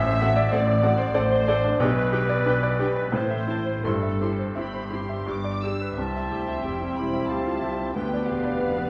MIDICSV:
0, 0, Header, 1, 11, 480
1, 0, Start_track
1, 0, Key_signature, 0, "major"
1, 0, Tempo, 642398
1, 1346, Time_signature, 3, 2, 24, 8
1, 1842, Tempo, 677201
1, 2322, Tempo, 709220
1, 4242, Tempo, 655022
1, 6381, End_track
2, 0, Start_track
2, 0, Title_t, "Violin section"
2, 0, Program_c, 0, 48
2, 165, Note_on_c, 0, 78, 56
2, 225, Note_off_c, 0, 78, 0
2, 392, Note_on_c, 0, 78, 60
2, 452, Note_off_c, 0, 78, 0
2, 623, Note_on_c, 0, 78, 55
2, 682, Note_off_c, 0, 78, 0
2, 860, Note_on_c, 0, 78, 69
2, 920, Note_off_c, 0, 78, 0
2, 1111, Note_on_c, 0, 78, 59
2, 1171, Note_off_c, 0, 78, 0
2, 1346, Note_on_c, 0, 79, 63
2, 1406, Note_off_c, 0, 79, 0
2, 1600, Note_on_c, 0, 79, 58
2, 1660, Note_off_c, 0, 79, 0
2, 1850, Note_on_c, 0, 79, 58
2, 1906, Note_off_c, 0, 79, 0
2, 2083, Note_on_c, 0, 79, 56
2, 2140, Note_off_c, 0, 79, 0
2, 2330, Note_on_c, 0, 81, 52
2, 2384, Note_off_c, 0, 81, 0
2, 2561, Note_on_c, 0, 81, 51
2, 2615, Note_off_c, 0, 81, 0
2, 2803, Note_on_c, 0, 84, 52
2, 2857, Note_off_c, 0, 84, 0
2, 3054, Note_on_c, 0, 84, 46
2, 3108, Note_off_c, 0, 84, 0
2, 3287, Note_on_c, 0, 83, 55
2, 3512, Note_off_c, 0, 83, 0
2, 3534, Note_on_c, 0, 84, 49
2, 3771, Note_on_c, 0, 86, 62
2, 3772, Note_off_c, 0, 84, 0
2, 4009, Note_on_c, 0, 88, 56
2, 4011, Note_off_c, 0, 86, 0
2, 4240, Note_off_c, 0, 88, 0
2, 4245, Note_on_c, 0, 76, 57
2, 4940, Note_off_c, 0, 76, 0
2, 4963, Note_on_c, 0, 83, 59
2, 5199, Note_on_c, 0, 81, 55
2, 5208, Note_off_c, 0, 83, 0
2, 5681, Note_off_c, 0, 81, 0
2, 5681, Note_on_c, 0, 79, 59
2, 5918, Note_off_c, 0, 79, 0
2, 5929, Note_on_c, 0, 77, 58
2, 6381, Note_off_c, 0, 77, 0
2, 6381, End_track
3, 0, Start_track
3, 0, Title_t, "Flute"
3, 0, Program_c, 1, 73
3, 4235, Note_on_c, 1, 81, 55
3, 4719, Note_on_c, 1, 79, 43
3, 4730, Note_off_c, 1, 81, 0
3, 5206, Note_on_c, 1, 77, 48
3, 5217, Note_off_c, 1, 79, 0
3, 5446, Note_on_c, 1, 76, 48
3, 5457, Note_off_c, 1, 77, 0
3, 5679, Note_off_c, 1, 76, 0
3, 5684, Note_on_c, 1, 71, 55
3, 6381, Note_off_c, 1, 71, 0
3, 6381, End_track
4, 0, Start_track
4, 0, Title_t, "Clarinet"
4, 0, Program_c, 2, 71
4, 0, Note_on_c, 2, 76, 111
4, 390, Note_on_c, 2, 74, 91
4, 402, Note_off_c, 2, 76, 0
4, 854, Note_on_c, 2, 72, 99
4, 865, Note_off_c, 2, 74, 0
4, 1348, Note_on_c, 2, 71, 107
4, 1359, Note_off_c, 2, 72, 0
4, 2073, Note_off_c, 2, 71, 0
4, 2077, Note_on_c, 2, 71, 82
4, 2320, Note_on_c, 2, 72, 83
4, 2330, Note_off_c, 2, 71, 0
4, 2795, Note_on_c, 2, 69, 80
4, 2805, Note_off_c, 2, 72, 0
4, 3118, Note_off_c, 2, 69, 0
4, 3278, Note_on_c, 2, 67, 50
4, 3977, Note_off_c, 2, 67, 0
4, 4234, Note_on_c, 2, 67, 42
4, 5654, Note_off_c, 2, 67, 0
4, 5682, Note_on_c, 2, 67, 47
4, 6381, Note_off_c, 2, 67, 0
4, 6381, End_track
5, 0, Start_track
5, 0, Title_t, "Violin section"
5, 0, Program_c, 3, 48
5, 0, Note_on_c, 3, 76, 103
5, 385, Note_off_c, 3, 76, 0
5, 385, Note_on_c, 3, 74, 82
5, 861, Note_off_c, 3, 74, 0
5, 861, Note_on_c, 3, 72, 98
5, 1343, Note_on_c, 3, 71, 91
5, 1345, Note_off_c, 3, 72, 0
5, 2064, Note_off_c, 3, 71, 0
5, 2076, Note_on_c, 3, 71, 75
5, 2313, Note_on_c, 3, 72, 81
5, 2314, Note_off_c, 3, 71, 0
5, 2796, Note_on_c, 3, 69, 74
5, 2798, Note_off_c, 3, 72, 0
5, 3278, Note_off_c, 3, 69, 0
5, 3283, Note_on_c, 3, 67, 54
5, 4007, Note_off_c, 3, 67, 0
5, 4234, Note_on_c, 3, 67, 45
5, 4234, Note_on_c, 3, 72, 46
5, 5177, Note_off_c, 3, 67, 0
5, 5177, Note_off_c, 3, 72, 0
5, 5204, Note_on_c, 3, 64, 47
5, 5204, Note_on_c, 3, 72, 47
5, 5675, Note_off_c, 3, 72, 0
5, 5684, Note_off_c, 3, 64, 0
5, 5686, Note_on_c, 3, 67, 45
5, 5689, Note_on_c, 3, 71, 46
5, 6153, Note_off_c, 3, 67, 0
5, 6159, Note_off_c, 3, 71, 0
5, 6168, Note_on_c, 3, 71, 46
5, 6170, Note_on_c, 3, 74, 42
5, 6381, Note_off_c, 3, 71, 0
5, 6381, Note_off_c, 3, 74, 0
5, 6381, End_track
6, 0, Start_track
6, 0, Title_t, "Grand piano"
6, 0, Program_c, 4, 0
6, 0, Note_on_c, 4, 33, 82
6, 47, Note_on_c, 4, 72, 60
6, 62, Control_c, 4, 64, 127
6, 160, Note_on_c, 4, 66, 68
6, 230, Note_off_c, 4, 72, 0
6, 268, Note_on_c, 4, 74, 68
6, 345, Note_off_c, 4, 66, 0
6, 380, Note_on_c, 4, 72, 62
6, 458, Note_off_c, 4, 74, 0
6, 500, Note_on_c, 4, 74, 64
6, 573, Note_off_c, 4, 72, 0
6, 622, Note_on_c, 4, 66, 65
6, 694, Note_off_c, 4, 74, 0
6, 730, Note_on_c, 4, 72, 67
6, 815, Note_off_c, 4, 66, 0
6, 855, Note_on_c, 4, 74, 75
6, 928, Note_off_c, 4, 72, 0
6, 978, Note_on_c, 4, 72, 56
6, 1051, Note_off_c, 4, 74, 0
6, 1101, Note_off_c, 4, 72, 0
6, 1108, Note_on_c, 4, 74, 74
6, 1227, Note_on_c, 4, 62, 62
6, 1300, Note_off_c, 4, 74, 0
6, 1316, Note_off_c, 4, 33, 0
6, 1344, Note_on_c, 4, 35, 85
6, 1348, Note_off_c, 4, 62, 0
6, 1360, Control_c, 4, 64, 0
6, 1466, Control_c, 4, 64, 127
6, 1469, Note_on_c, 4, 71, 56
6, 1588, Note_on_c, 4, 67, 66
6, 1667, Note_off_c, 4, 71, 0
6, 1713, Note_on_c, 4, 74, 69
6, 1789, Note_off_c, 4, 67, 0
6, 1841, Note_on_c, 4, 71, 61
6, 1911, Note_off_c, 4, 74, 0
6, 1959, Note_on_c, 4, 74, 65
6, 2032, Note_off_c, 4, 71, 0
6, 2075, Note_on_c, 4, 67, 60
6, 2151, Note_off_c, 4, 74, 0
6, 2194, Note_on_c, 4, 71, 58
6, 2270, Note_off_c, 4, 67, 0
6, 2292, Note_off_c, 4, 35, 0
6, 2308, Note_on_c, 4, 45, 73
6, 2318, Note_off_c, 4, 71, 0
6, 2335, Control_c, 4, 64, 0
6, 2431, Note_on_c, 4, 76, 55
6, 2469, Control_c, 4, 64, 127
6, 2547, Note_on_c, 4, 64, 56
6, 2627, Note_off_c, 4, 76, 0
6, 2674, Note_on_c, 4, 72, 52
6, 2748, Note_off_c, 4, 64, 0
6, 2782, Note_off_c, 4, 45, 0
6, 2800, Note_off_c, 4, 72, 0
6, 2801, Note_on_c, 4, 43, 62
6, 2816, Control_c, 4, 64, 0
6, 2921, Note_on_c, 4, 76, 42
6, 2947, Control_c, 4, 64, 127
6, 3048, Note_on_c, 4, 67, 48
6, 3119, Note_off_c, 4, 76, 0
6, 3167, Note_on_c, 4, 72, 49
6, 3242, Note_off_c, 4, 67, 0
6, 3278, Note_on_c, 4, 76, 46
6, 3361, Note_off_c, 4, 72, 0
6, 3399, Note_on_c, 4, 72, 48
6, 3477, Note_off_c, 4, 76, 0
6, 3514, Note_on_c, 4, 67, 50
6, 3597, Note_off_c, 4, 72, 0
6, 3642, Note_on_c, 4, 76, 46
6, 3714, Note_off_c, 4, 67, 0
6, 3743, Note_off_c, 4, 43, 0
6, 3756, Note_on_c, 4, 43, 59
6, 3766, Note_off_c, 4, 76, 0
6, 3784, Control_c, 4, 64, 0
6, 3879, Note_on_c, 4, 74, 44
6, 3908, Control_c, 4, 64, 127
6, 4009, Note_on_c, 4, 67, 44
6, 4076, Note_off_c, 4, 74, 0
6, 4129, Note_on_c, 4, 71, 42
6, 4195, Note_off_c, 4, 67, 0
6, 4219, Note_off_c, 4, 43, 0
6, 4240, Note_on_c, 4, 36, 53
6, 4241, Note_off_c, 4, 71, 0
6, 4253, Control_c, 4, 64, 0
6, 4357, Control_c, 4, 64, 127
6, 4376, Note_on_c, 4, 76, 35
6, 4472, Note_off_c, 4, 36, 0
6, 4489, Note_on_c, 4, 67, 40
6, 4560, Note_off_c, 4, 76, 0
6, 4608, Note_on_c, 4, 76, 45
6, 4678, Note_off_c, 4, 67, 0
6, 4730, Note_on_c, 4, 67, 36
6, 4799, Note_off_c, 4, 76, 0
6, 4858, Note_on_c, 4, 60, 36
6, 4922, Note_off_c, 4, 67, 0
6, 4979, Note_on_c, 4, 67, 43
6, 5047, Note_off_c, 4, 60, 0
6, 5089, Note_on_c, 4, 76, 43
6, 5168, Note_off_c, 4, 67, 0
6, 5216, Note_on_c, 4, 67, 43
6, 5282, Note_off_c, 4, 76, 0
6, 5338, Note_on_c, 4, 65, 35
6, 5405, Note_off_c, 4, 67, 0
6, 5453, Note_off_c, 4, 65, 0
6, 5459, Note_on_c, 4, 67, 45
6, 5579, Note_on_c, 4, 60, 37
6, 5644, Note_off_c, 4, 67, 0
6, 5692, Note_on_c, 4, 38, 48
6, 5693, Note_off_c, 4, 60, 0
6, 5701, Control_c, 4, 64, 0
6, 5822, Control_c, 4, 64, 127
6, 5822, Note_on_c, 4, 74, 41
6, 5921, Note_off_c, 4, 38, 0
6, 5937, Note_on_c, 4, 67, 39
6, 6005, Note_off_c, 4, 74, 0
6, 6050, Note_on_c, 4, 74, 46
6, 6121, Note_off_c, 4, 67, 0
6, 6167, Note_on_c, 4, 67, 39
6, 6237, Note_off_c, 4, 74, 0
6, 6288, Note_on_c, 4, 59, 43
6, 6355, Note_off_c, 4, 67, 0
6, 6381, Note_off_c, 4, 59, 0
6, 6381, End_track
7, 0, Start_track
7, 0, Title_t, "Viola section"
7, 0, Program_c, 5, 48
7, 151, Note_on_c, 5, 60, 62
7, 152, Note_on_c, 5, 69, 61
7, 211, Note_off_c, 5, 60, 0
7, 212, Note_off_c, 5, 69, 0
7, 379, Note_on_c, 5, 69, 65
7, 383, Note_on_c, 5, 60, 60
7, 439, Note_off_c, 5, 69, 0
7, 442, Note_off_c, 5, 60, 0
7, 614, Note_on_c, 5, 69, 61
7, 617, Note_on_c, 5, 60, 60
7, 673, Note_off_c, 5, 69, 0
7, 676, Note_off_c, 5, 60, 0
7, 848, Note_on_c, 5, 60, 65
7, 851, Note_on_c, 5, 69, 65
7, 907, Note_off_c, 5, 60, 0
7, 911, Note_off_c, 5, 69, 0
7, 1104, Note_on_c, 5, 69, 62
7, 1105, Note_on_c, 5, 60, 56
7, 1164, Note_off_c, 5, 69, 0
7, 1165, Note_off_c, 5, 60, 0
7, 1344, Note_on_c, 5, 62, 70
7, 1345, Note_on_c, 5, 67, 65
7, 1404, Note_off_c, 5, 62, 0
7, 1405, Note_off_c, 5, 67, 0
7, 1578, Note_on_c, 5, 67, 56
7, 1582, Note_on_c, 5, 62, 56
7, 1638, Note_off_c, 5, 67, 0
7, 1642, Note_off_c, 5, 62, 0
7, 1825, Note_on_c, 5, 62, 56
7, 1828, Note_on_c, 5, 67, 56
7, 1882, Note_off_c, 5, 62, 0
7, 1886, Note_off_c, 5, 67, 0
7, 2071, Note_on_c, 5, 62, 59
7, 2071, Note_on_c, 5, 67, 51
7, 2128, Note_off_c, 5, 62, 0
7, 2128, Note_off_c, 5, 67, 0
7, 2314, Note_on_c, 5, 60, 53
7, 2317, Note_on_c, 5, 64, 54
7, 2368, Note_off_c, 5, 60, 0
7, 2371, Note_off_c, 5, 64, 0
7, 2544, Note_on_c, 5, 60, 43
7, 2544, Note_on_c, 5, 64, 48
7, 2598, Note_off_c, 5, 60, 0
7, 2598, Note_off_c, 5, 64, 0
7, 2796, Note_on_c, 5, 60, 54
7, 2797, Note_on_c, 5, 64, 51
7, 2850, Note_off_c, 5, 60, 0
7, 2851, Note_off_c, 5, 64, 0
7, 3039, Note_on_c, 5, 60, 42
7, 3042, Note_on_c, 5, 64, 46
7, 3094, Note_off_c, 5, 60, 0
7, 3096, Note_off_c, 5, 64, 0
7, 3280, Note_on_c, 5, 64, 48
7, 3283, Note_on_c, 5, 60, 48
7, 3334, Note_off_c, 5, 64, 0
7, 3337, Note_off_c, 5, 60, 0
7, 3520, Note_on_c, 5, 64, 45
7, 3521, Note_on_c, 5, 60, 42
7, 3574, Note_off_c, 5, 64, 0
7, 3575, Note_off_c, 5, 60, 0
7, 3763, Note_on_c, 5, 67, 44
7, 3764, Note_on_c, 5, 62, 45
7, 3817, Note_off_c, 5, 67, 0
7, 3818, Note_off_c, 5, 62, 0
7, 4008, Note_on_c, 5, 67, 41
7, 4011, Note_on_c, 5, 62, 38
7, 4062, Note_off_c, 5, 67, 0
7, 4065, Note_off_c, 5, 62, 0
7, 4234, Note_on_c, 5, 64, 44
7, 4235, Note_on_c, 5, 55, 43
7, 5654, Note_off_c, 5, 64, 0
7, 5655, Note_off_c, 5, 55, 0
7, 5686, Note_on_c, 5, 59, 45
7, 5689, Note_on_c, 5, 62, 45
7, 6154, Note_off_c, 5, 62, 0
7, 6168, Note_on_c, 5, 62, 46
7, 6381, Note_off_c, 5, 59, 0
7, 6381, Note_off_c, 5, 62, 0
7, 6381, End_track
8, 0, Start_track
8, 0, Title_t, "French horn section"
8, 0, Program_c, 6, 60
8, 4228, Note_on_c, 6, 67, 45
8, 4232, Note_on_c, 6, 60, 48
8, 5653, Note_off_c, 6, 60, 0
8, 5682, Note_on_c, 6, 59, 48
8, 6381, Note_off_c, 6, 59, 0
8, 6381, Note_off_c, 6, 67, 0
8, 6381, End_track
9, 0, Start_track
9, 0, Title_t, "Bassoon"
9, 0, Program_c, 7, 70
9, 4237, Note_on_c, 7, 60, 44
9, 5656, Note_off_c, 7, 60, 0
9, 5684, Note_on_c, 7, 59, 47
9, 6381, Note_off_c, 7, 59, 0
9, 6381, End_track
10, 0, Start_track
10, 0, Title_t, "Cello section"
10, 0, Program_c, 8, 48
10, 0, Note_on_c, 8, 45, 81
10, 333, Note_off_c, 8, 45, 0
10, 386, Note_on_c, 8, 45, 72
10, 806, Note_off_c, 8, 45, 0
10, 857, Note_on_c, 8, 45, 78
10, 1285, Note_off_c, 8, 45, 0
10, 1341, Note_on_c, 8, 47, 72
10, 1780, Note_off_c, 8, 47, 0
10, 1837, Note_on_c, 8, 47, 66
10, 2262, Note_off_c, 8, 47, 0
10, 2317, Note_on_c, 8, 45, 67
10, 2742, Note_off_c, 8, 45, 0
10, 2798, Note_on_c, 8, 43, 62
10, 3231, Note_off_c, 8, 43, 0
10, 3289, Note_on_c, 8, 43, 56
10, 3714, Note_off_c, 8, 43, 0
10, 3764, Note_on_c, 8, 43, 58
10, 4184, Note_off_c, 8, 43, 0
10, 4235, Note_on_c, 8, 36, 47
10, 4460, Note_off_c, 8, 36, 0
10, 4474, Note_on_c, 8, 38, 43
10, 4714, Note_off_c, 8, 38, 0
10, 4716, Note_on_c, 8, 41, 44
10, 4958, Note_on_c, 8, 40, 46
10, 4964, Note_off_c, 8, 41, 0
10, 5200, Note_off_c, 8, 40, 0
10, 5204, Note_on_c, 8, 38, 48
10, 5441, Note_off_c, 8, 38, 0
10, 5446, Note_on_c, 8, 36, 47
10, 5686, Note_off_c, 8, 36, 0
10, 5688, Note_on_c, 8, 38, 47
10, 5921, Note_off_c, 8, 38, 0
10, 5927, Note_on_c, 8, 40, 47
10, 6164, Note_off_c, 8, 40, 0
10, 6169, Note_on_c, 8, 41, 47
10, 6381, Note_off_c, 8, 41, 0
10, 6381, End_track
11, 0, Start_track
11, 0, Title_t, "Double bass section"
11, 0, Program_c, 10, 48
11, 0, Note_on_c, 10, 33, 73
11, 335, Note_off_c, 10, 33, 0
11, 395, Note_on_c, 10, 33, 91
11, 810, Note_off_c, 10, 33, 0
11, 864, Note_on_c, 10, 33, 71
11, 1289, Note_off_c, 10, 33, 0
11, 1342, Note_on_c, 10, 35, 68
11, 1780, Note_off_c, 10, 35, 0
11, 1831, Note_on_c, 10, 35, 73
11, 2259, Note_off_c, 10, 35, 0
11, 2313, Note_on_c, 10, 33, 64
11, 2740, Note_off_c, 10, 33, 0
11, 2796, Note_on_c, 10, 31, 58
11, 3231, Note_off_c, 10, 31, 0
11, 3284, Note_on_c, 10, 31, 58
11, 3711, Note_off_c, 10, 31, 0
11, 3764, Note_on_c, 10, 31, 54
11, 4184, Note_off_c, 10, 31, 0
11, 4233, Note_on_c, 10, 36, 46
11, 4458, Note_off_c, 10, 36, 0
11, 4473, Note_on_c, 10, 38, 43
11, 4714, Note_off_c, 10, 38, 0
11, 4717, Note_on_c, 10, 29, 50
11, 4961, Note_on_c, 10, 28, 42
11, 4964, Note_off_c, 10, 29, 0
11, 5199, Note_on_c, 10, 38, 43
11, 5202, Note_off_c, 10, 28, 0
11, 5439, Note_off_c, 10, 38, 0
11, 5443, Note_on_c, 10, 36, 44
11, 5682, Note_on_c, 10, 38, 44
11, 5684, Note_off_c, 10, 36, 0
11, 5918, Note_off_c, 10, 38, 0
11, 5927, Note_on_c, 10, 28, 45
11, 6156, Note_on_c, 10, 29, 50
11, 6164, Note_off_c, 10, 28, 0
11, 6381, Note_off_c, 10, 29, 0
11, 6381, End_track
0, 0, End_of_file